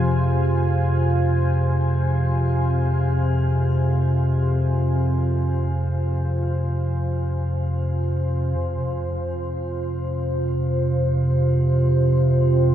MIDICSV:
0, 0, Header, 1, 4, 480
1, 0, Start_track
1, 0, Key_signature, -4, "minor"
1, 0, Tempo, 500000
1, 12239, End_track
2, 0, Start_track
2, 0, Title_t, "Ambient pad"
2, 0, Program_c, 0, 92
2, 0, Note_on_c, 0, 65, 69
2, 0, Note_on_c, 0, 72, 68
2, 0, Note_on_c, 0, 80, 68
2, 8237, Note_off_c, 0, 80, 0
2, 10281, Note_on_c, 0, 79, 59
2, 12239, Note_off_c, 0, 65, 0
2, 12239, Note_off_c, 0, 72, 0
2, 12239, Note_off_c, 0, 79, 0
2, 12239, End_track
3, 0, Start_track
3, 0, Title_t, "Singing bowl"
3, 0, Program_c, 1, 14
3, 0, Note_on_c, 1, 68, 58
3, 8265, Note_off_c, 1, 68, 0
3, 12239, End_track
4, 0, Start_track
4, 0, Title_t, "Synth drone"
4, 0, Program_c, 2, 95
4, 0, Note_on_c, 2, 41, 64
4, 0, Note_on_c, 2, 48, 67
4, 8211, Note_off_c, 2, 41, 0
4, 8217, Note_off_c, 2, 48, 0
4, 8223, Note_on_c, 2, 41, 67
4, 8229, Note_on_c, 2, 48, 62
4, 12239, Note_off_c, 2, 41, 0
4, 12239, Note_off_c, 2, 48, 0
4, 12239, End_track
0, 0, End_of_file